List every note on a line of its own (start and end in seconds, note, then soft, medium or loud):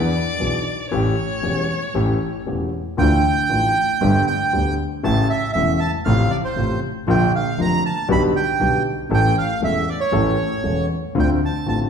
0.00 0.10 E2 medium
0.00 0.10 E3 medium
0.00 0.10 B3 medium
0.00 0.10 G#4 medium
0.00 0.90 D5 loud
0.40 0.61 B1 medium
0.40 0.62 B1 medium
0.40 0.62 B2 medium
0.40 0.61 E3 soft
0.40 0.62 B3 soft
0.40 0.62 D4 soft
0.40 0.62 G#4 medium
0.91 1.13 A1 medium
0.91 1.13 A2 medium
0.91 1.13 E3 medium
0.91 1.13 A3 medium
0.91 1.13 C#4 medium
0.91 1.13 G4 medium
0.91 2.42 C#5 medium
1.43 1.65 E1 medium
1.43 1.65 E2 soft
1.43 1.65 E3 soft
1.43 1.64 A3 soft
1.43 1.65 C#4 soft
1.43 1.65 G4 soft
1.95 2.16 A1 medium
1.95 2.17 A1 medium
1.95 2.16 A2 medium
1.95 2.16 E3 medium
1.95 2.16 A3 medium
1.95 2.16 C#4 medium
1.95 2.16 G4 medium
2.46 2.68 E1 medium
2.46 2.68 E1 soft
2.46 2.69 E2 soft
2.46 2.68 E3 soft
2.46 2.68 A3 soft
2.46 2.68 C#4 soft
2.46 2.68 G4 soft
2.97 3.20 D2 medium
2.97 3.20 D2 loud
2.97 3.20 D3 medium
2.97 3.19 E3 medium
2.97 3.20 A3 medium
2.97 3.20 D4 medium
2.97 3.20 F4 medium
2.97 4.25 G5 loud
3.49 3.71 A1 medium
3.49 3.72 A1 medium
3.49 3.71 A2 medium
3.49 3.71 E3 soft
3.49 3.71 A3 soft
3.49 3.71 D4 soft
3.49 3.72 F4 medium
4.01 4.23 G1 loud
4.01 4.23 G1 medium
4.01 4.23 G2 medium
4.01 4.23 D3 medium
4.01 4.23 A3 medium
4.01 4.23 B3 medium
4.01 4.23 G4 medium
4.27 4.75 G5 loud
4.53 4.74 D2 medium
4.53 4.75 D2 medium
4.53 4.75 D3 medium
4.53 4.74 A3 soft
4.53 4.74 B3 soft
4.53 4.75 G4 medium
5.03 5.25 A1 medium
5.03 5.26 A1 medium
5.03 5.25 A2 medium
5.03 5.25 C#3 medium
5.03 5.25 E3 medium
5.03 5.25 A3 medium
5.03 5.25 E4 medium
5.03 5.28 A5 loud
5.30 5.51 E5 medium
5.53 5.77 E1 medium
5.53 5.77 E2 medium
5.53 5.77 C#3 soft
5.53 5.77 E3 soft
5.53 5.77 A3 soft
5.53 5.77 E4 medium
5.53 5.80 E5 medium
5.80 5.92 A5 medium
6.05 6.28 A1 medium
6.05 6.28 A1 loud
6.05 6.27 A2 medium
6.05 6.27 C3 medium
6.05 6.27 F3 medium
6.05 6.27 A3 medium
6.05 6.28 F4 medium
6.05 6.32 F5 medium
6.30 6.36 D5 medium
6.45 6.80 C5 medium
6.56 6.78 A1 medium
6.56 6.78 A2 medium
6.56 6.78 C3 medium
6.56 6.78 F3 soft
6.56 6.78 A3 soft
6.56 6.78 F4 medium
7.07 7.29 A#1 loud
7.07 7.29 A#1 medium
7.07 7.29 A#2 medium
7.07 7.29 D3 medium
7.07 7.29 F3 medium
7.07 7.29 A#3 medium
7.07 7.29 F4 medium
7.07 7.33 G5 medium
7.36 7.60 F5 medium
7.58 7.80 F1 medium
7.58 7.80 F2 medium
7.58 7.79 D3 soft
7.58 7.80 F3 soft
7.58 7.80 A#3 soft
7.58 7.80 F4 medium
7.58 7.84 A#5 loud
7.86 8.09 A5 medium
8.08 8.30 B1 medium
8.08 8.31 B1 loud
8.08 8.31 B2 medium
8.08 8.30 D3 medium
8.08 8.30 G3 medium
8.08 8.30 B3 medium
8.08 8.30 G4 medium
8.08 8.23 B5 loud
8.36 8.83 G5 medium
8.60 8.81 B1 medium
8.60 8.82 B1 medium
8.60 8.82 B2 medium
8.60 8.82 D3 soft
8.60 8.82 G3 soft
8.60 8.82 B3 soft
8.60 8.82 G4 medium
9.11 9.32 A1 medium
9.11 9.32 A2 medium
9.11 9.32 E3 medium
9.11 9.32 A3 medium
9.11 9.32 C#4 medium
9.11 9.32 A4 medium
9.11 9.36 G5 loud
9.38 9.61 F5 medium
9.61 9.83 E1 medium
9.61 9.84 E1 medium
9.61 9.84 E2 medium
9.61 9.84 E3 soft
9.61 9.83 A3 soft
9.61 9.84 C#4 soft
9.61 9.84 A4 medium
9.61 9.89 E5 medium
9.89 10.00 D5 medium
10.00 10.86 C#5 medium
10.12 10.34 A1 loud
10.12 10.34 A1 medium
10.12 10.34 A2 medium
10.12 10.34 E3 medium
10.12 10.34 A3 medium
10.12 10.34 C#4 medium
10.12 10.35 A4 medium
10.63 10.86 E1 medium
10.63 10.86 E2 medium
10.63 10.86 E3 soft
10.63 10.86 A3 soft
10.63 10.86 C#4 soft
10.63 10.86 A4 soft
11.15 11.37 D2 medium
11.15 11.37 D3 medium
11.15 11.37 A3 medium
11.15 11.37 C4 medium
11.15 11.37 F4 medium
11.20 11.30 G5 medium
11.45 11.67 A5 medium
11.66 11.88 A1 medium
11.66 11.88 A2 medium
11.66 11.88 D3 soft
11.66 11.88 A3 soft
11.66 11.88 C4 soft
11.66 11.88 F4 soft
11.66 11.80 A5 medium